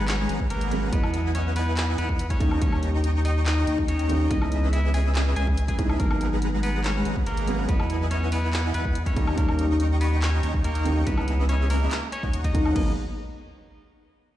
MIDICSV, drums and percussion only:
0, 0, Header, 1, 2, 480
1, 0, Start_track
1, 0, Key_signature, 5, "minor"
1, 0, Tempo, 422535
1, 1052, Time_signature, 4, 2, 24, 8
1, 16323, End_track
2, 0, Start_track
2, 0, Title_t, "Drums"
2, 92, Note_on_c, 9, 39, 127
2, 92, Note_on_c, 9, 42, 85
2, 205, Note_off_c, 9, 39, 0
2, 205, Note_off_c, 9, 42, 0
2, 332, Note_on_c, 9, 42, 70
2, 446, Note_off_c, 9, 42, 0
2, 455, Note_on_c, 9, 36, 63
2, 569, Note_off_c, 9, 36, 0
2, 572, Note_on_c, 9, 42, 80
2, 685, Note_off_c, 9, 42, 0
2, 696, Note_on_c, 9, 42, 65
2, 810, Note_off_c, 9, 42, 0
2, 812, Note_on_c, 9, 42, 70
2, 925, Note_off_c, 9, 42, 0
2, 1051, Note_on_c, 9, 36, 127
2, 1052, Note_on_c, 9, 42, 84
2, 1165, Note_off_c, 9, 36, 0
2, 1165, Note_off_c, 9, 42, 0
2, 1176, Note_on_c, 9, 76, 81
2, 1289, Note_off_c, 9, 76, 0
2, 1291, Note_on_c, 9, 42, 68
2, 1405, Note_off_c, 9, 42, 0
2, 1532, Note_on_c, 9, 42, 85
2, 1645, Note_off_c, 9, 42, 0
2, 1771, Note_on_c, 9, 46, 89
2, 1885, Note_off_c, 9, 46, 0
2, 2011, Note_on_c, 9, 39, 127
2, 2011, Note_on_c, 9, 42, 84
2, 2125, Note_off_c, 9, 39, 0
2, 2125, Note_off_c, 9, 42, 0
2, 2251, Note_on_c, 9, 42, 73
2, 2365, Note_off_c, 9, 42, 0
2, 2375, Note_on_c, 9, 36, 66
2, 2489, Note_off_c, 9, 36, 0
2, 2491, Note_on_c, 9, 42, 84
2, 2605, Note_off_c, 9, 42, 0
2, 2615, Note_on_c, 9, 36, 62
2, 2616, Note_on_c, 9, 42, 63
2, 2729, Note_off_c, 9, 36, 0
2, 2729, Note_off_c, 9, 42, 0
2, 2731, Note_on_c, 9, 36, 112
2, 2732, Note_on_c, 9, 42, 69
2, 2845, Note_off_c, 9, 36, 0
2, 2845, Note_off_c, 9, 42, 0
2, 2855, Note_on_c, 9, 76, 76
2, 2969, Note_off_c, 9, 76, 0
2, 2971, Note_on_c, 9, 36, 127
2, 2971, Note_on_c, 9, 42, 82
2, 3085, Note_off_c, 9, 36, 0
2, 3085, Note_off_c, 9, 42, 0
2, 3095, Note_on_c, 9, 76, 75
2, 3209, Note_off_c, 9, 76, 0
2, 3211, Note_on_c, 9, 42, 68
2, 3325, Note_off_c, 9, 42, 0
2, 3452, Note_on_c, 9, 42, 82
2, 3565, Note_off_c, 9, 42, 0
2, 3692, Note_on_c, 9, 46, 89
2, 3805, Note_off_c, 9, 46, 0
2, 3932, Note_on_c, 9, 39, 127
2, 3932, Note_on_c, 9, 42, 82
2, 4046, Note_off_c, 9, 39, 0
2, 4046, Note_off_c, 9, 42, 0
2, 4172, Note_on_c, 9, 42, 71
2, 4286, Note_off_c, 9, 42, 0
2, 4296, Note_on_c, 9, 36, 68
2, 4409, Note_off_c, 9, 36, 0
2, 4412, Note_on_c, 9, 42, 83
2, 4525, Note_off_c, 9, 42, 0
2, 4536, Note_on_c, 9, 42, 63
2, 4650, Note_off_c, 9, 42, 0
2, 4652, Note_on_c, 9, 42, 69
2, 4766, Note_off_c, 9, 42, 0
2, 4892, Note_on_c, 9, 36, 127
2, 4892, Note_on_c, 9, 42, 78
2, 5006, Note_off_c, 9, 36, 0
2, 5006, Note_off_c, 9, 42, 0
2, 5016, Note_on_c, 9, 76, 82
2, 5130, Note_off_c, 9, 76, 0
2, 5132, Note_on_c, 9, 42, 65
2, 5246, Note_off_c, 9, 42, 0
2, 5372, Note_on_c, 9, 42, 76
2, 5486, Note_off_c, 9, 42, 0
2, 5613, Note_on_c, 9, 46, 86
2, 5727, Note_off_c, 9, 46, 0
2, 5853, Note_on_c, 9, 39, 127
2, 5853, Note_on_c, 9, 42, 85
2, 5966, Note_off_c, 9, 39, 0
2, 5966, Note_off_c, 9, 42, 0
2, 6093, Note_on_c, 9, 42, 69
2, 6207, Note_off_c, 9, 42, 0
2, 6217, Note_on_c, 9, 36, 65
2, 6330, Note_off_c, 9, 36, 0
2, 6333, Note_on_c, 9, 42, 82
2, 6447, Note_off_c, 9, 42, 0
2, 6457, Note_on_c, 9, 36, 60
2, 6457, Note_on_c, 9, 42, 64
2, 6570, Note_off_c, 9, 36, 0
2, 6570, Note_off_c, 9, 42, 0
2, 6573, Note_on_c, 9, 36, 108
2, 6573, Note_on_c, 9, 42, 63
2, 6686, Note_off_c, 9, 36, 0
2, 6687, Note_off_c, 9, 42, 0
2, 6697, Note_on_c, 9, 76, 77
2, 6810, Note_off_c, 9, 76, 0
2, 6812, Note_on_c, 9, 42, 74
2, 6813, Note_on_c, 9, 36, 119
2, 6926, Note_off_c, 9, 36, 0
2, 6926, Note_off_c, 9, 42, 0
2, 6937, Note_on_c, 9, 76, 86
2, 7050, Note_off_c, 9, 76, 0
2, 7053, Note_on_c, 9, 42, 63
2, 7166, Note_off_c, 9, 42, 0
2, 7293, Note_on_c, 9, 42, 74
2, 7406, Note_off_c, 9, 42, 0
2, 7533, Note_on_c, 9, 46, 87
2, 7646, Note_off_c, 9, 46, 0
2, 7773, Note_on_c, 9, 39, 124
2, 7773, Note_on_c, 9, 42, 76
2, 7886, Note_off_c, 9, 39, 0
2, 7886, Note_off_c, 9, 42, 0
2, 8013, Note_on_c, 9, 42, 62
2, 8126, Note_off_c, 9, 42, 0
2, 8136, Note_on_c, 9, 36, 61
2, 8250, Note_off_c, 9, 36, 0
2, 8252, Note_on_c, 9, 42, 76
2, 8366, Note_off_c, 9, 42, 0
2, 8376, Note_on_c, 9, 42, 60
2, 8490, Note_off_c, 9, 42, 0
2, 8492, Note_on_c, 9, 42, 62
2, 8606, Note_off_c, 9, 42, 0
2, 8732, Note_on_c, 9, 36, 124
2, 8732, Note_on_c, 9, 42, 76
2, 8845, Note_off_c, 9, 36, 0
2, 8846, Note_off_c, 9, 42, 0
2, 8856, Note_on_c, 9, 76, 85
2, 8970, Note_off_c, 9, 76, 0
2, 8972, Note_on_c, 9, 42, 64
2, 9086, Note_off_c, 9, 42, 0
2, 9212, Note_on_c, 9, 42, 77
2, 9325, Note_off_c, 9, 42, 0
2, 9452, Note_on_c, 9, 46, 90
2, 9565, Note_off_c, 9, 46, 0
2, 9692, Note_on_c, 9, 39, 118
2, 9692, Note_on_c, 9, 42, 76
2, 9805, Note_off_c, 9, 39, 0
2, 9805, Note_off_c, 9, 42, 0
2, 9931, Note_on_c, 9, 42, 68
2, 10045, Note_off_c, 9, 42, 0
2, 10055, Note_on_c, 9, 36, 61
2, 10169, Note_off_c, 9, 36, 0
2, 10171, Note_on_c, 9, 42, 79
2, 10285, Note_off_c, 9, 42, 0
2, 10295, Note_on_c, 9, 36, 58
2, 10296, Note_on_c, 9, 42, 59
2, 10409, Note_off_c, 9, 36, 0
2, 10409, Note_off_c, 9, 42, 0
2, 10411, Note_on_c, 9, 42, 60
2, 10412, Note_on_c, 9, 36, 100
2, 10525, Note_off_c, 9, 36, 0
2, 10525, Note_off_c, 9, 42, 0
2, 10536, Note_on_c, 9, 76, 87
2, 10649, Note_off_c, 9, 76, 0
2, 10651, Note_on_c, 9, 36, 122
2, 10651, Note_on_c, 9, 42, 77
2, 10765, Note_off_c, 9, 36, 0
2, 10765, Note_off_c, 9, 42, 0
2, 10776, Note_on_c, 9, 76, 85
2, 10889, Note_off_c, 9, 76, 0
2, 10891, Note_on_c, 9, 42, 65
2, 11005, Note_off_c, 9, 42, 0
2, 11131, Note_on_c, 9, 42, 76
2, 11245, Note_off_c, 9, 42, 0
2, 11371, Note_on_c, 9, 46, 92
2, 11485, Note_off_c, 9, 46, 0
2, 11611, Note_on_c, 9, 39, 118
2, 11611, Note_on_c, 9, 42, 80
2, 11725, Note_off_c, 9, 39, 0
2, 11725, Note_off_c, 9, 42, 0
2, 11851, Note_on_c, 9, 42, 65
2, 11965, Note_off_c, 9, 42, 0
2, 11975, Note_on_c, 9, 36, 62
2, 12089, Note_off_c, 9, 36, 0
2, 12091, Note_on_c, 9, 42, 78
2, 12205, Note_off_c, 9, 42, 0
2, 12215, Note_on_c, 9, 42, 61
2, 12329, Note_off_c, 9, 42, 0
2, 12332, Note_on_c, 9, 42, 63
2, 12445, Note_off_c, 9, 42, 0
2, 12571, Note_on_c, 9, 36, 121
2, 12572, Note_on_c, 9, 42, 81
2, 12685, Note_off_c, 9, 36, 0
2, 12685, Note_off_c, 9, 42, 0
2, 12696, Note_on_c, 9, 76, 85
2, 12809, Note_off_c, 9, 76, 0
2, 12812, Note_on_c, 9, 42, 66
2, 12925, Note_off_c, 9, 42, 0
2, 13052, Note_on_c, 9, 42, 81
2, 13166, Note_off_c, 9, 42, 0
2, 13292, Note_on_c, 9, 46, 95
2, 13406, Note_off_c, 9, 46, 0
2, 13532, Note_on_c, 9, 39, 120
2, 13532, Note_on_c, 9, 42, 86
2, 13646, Note_off_c, 9, 39, 0
2, 13646, Note_off_c, 9, 42, 0
2, 13772, Note_on_c, 9, 42, 70
2, 13886, Note_off_c, 9, 42, 0
2, 13896, Note_on_c, 9, 36, 63
2, 14009, Note_off_c, 9, 36, 0
2, 14012, Note_on_c, 9, 42, 81
2, 14126, Note_off_c, 9, 42, 0
2, 14136, Note_on_c, 9, 36, 58
2, 14136, Note_on_c, 9, 42, 61
2, 14250, Note_off_c, 9, 36, 0
2, 14250, Note_off_c, 9, 42, 0
2, 14252, Note_on_c, 9, 36, 102
2, 14253, Note_on_c, 9, 42, 67
2, 14366, Note_off_c, 9, 36, 0
2, 14366, Note_off_c, 9, 42, 0
2, 14377, Note_on_c, 9, 76, 80
2, 14490, Note_off_c, 9, 76, 0
2, 14492, Note_on_c, 9, 36, 118
2, 14493, Note_on_c, 9, 49, 87
2, 14606, Note_off_c, 9, 36, 0
2, 14606, Note_off_c, 9, 49, 0
2, 16323, End_track
0, 0, End_of_file